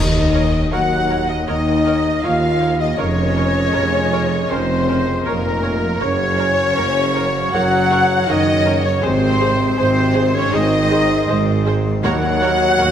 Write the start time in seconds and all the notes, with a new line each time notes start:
Already playing: D#2 D#3 F#3 A#3 D#4 A#4 D#5
0.34 A#4 C#5
0.71 D#2 F#3 F#4 A#4 C#5 F#5
1.10 A#4 C#5
1.27 D#3 D#4 D#5
1.46 D#2 D#3 D#4 A#4 C#5 D#5
1.85 A#4 C#5
2.23 D#2 F4 A#4 C#5 F5
2.61 A#4 C#5
2.78 D#3 D#5
2.82 D#4
2.97 F1 F2 C#3 C#4 F4 A#4 C#5
3.01 F1
3.37 A#4 C#5
3.74 F1 F2 A#4 C#5
4.13 A#4 C#5
4.48 F1 F2 C#3 C4 C#4 A#4 C5
4.89 C#4 A#4
5.24 F1 F2 A#2 A#3 A#4 C#5
5.63 A#4 C#5
6.00 F#1 F#2 C#3 A#3 C#4 F#4 A#4 C#5
6.39 A#4 C#5
6.76 F#1 F#2 A#4 C#5
7.15 A#4 C#5
7.52 F#1 F#2 F#3 F#4 A#4 C#5 F#5
7.91 A#4 C#5
8.27 F#1 F#2 D#3 D#4 A#4 C#5 D#5
8.66 A#4 C#5
8.84 C#3 C#4 C#5
9.02 G#1 G#2 C3 C4 D#4 G#4 C5
9.39 G#4 C5
9.77 G#1 G#2 C3 C4 G#4 C5
10.15 G#4 C5
10.33 C#3 C#4 C#5
10.51 G#1 G#2 D#3 D#4 G#4 C5 D#5
10.91 G#4 C5
11.28 G#1 G#2 G#4 C5
11.66 G#4 C5
12.02 D#2 D#3 F#3 A#3 F#4 A#4 C#5 F#5
12.42 A#4 C#5
12.79 D#2 A#4 C#5